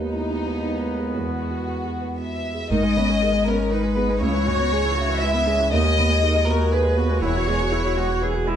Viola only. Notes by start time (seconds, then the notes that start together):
Already playing: B3
2.70 D#3
2.83 G#3
2.97 B3
3.09 G#3
3.21 D#3
3.32 G#3
3.46 B3
3.59 G#3
3.71 D#3
3.83 G#3
3.96 B3
4.09 G#3
4.21 C#3
4.33 E3
4.47 G#3
4.60 B3
4.72 G#3
4.85 E3
4.97 C#3
5.09 E3
5.22 G#3
5.34 B3
5.47 G#3
5.60 E3
5.72 D#3
5.84 G#3
5.98 B3
6.10 G#3
6.23 D#3
6.35 G#3
6.47 B3
6.59 G#3
6.71 D#3
6.85 G#3
6.97 B3
7.10 G#3
7.23 E3
7.36 F#3
7.48 G#3
7.61 F#3
7.73 E3
7.84 F#3
7.97 G#3
8.09 F#3
8.22 E3
8.33 F#3
8.47 G#3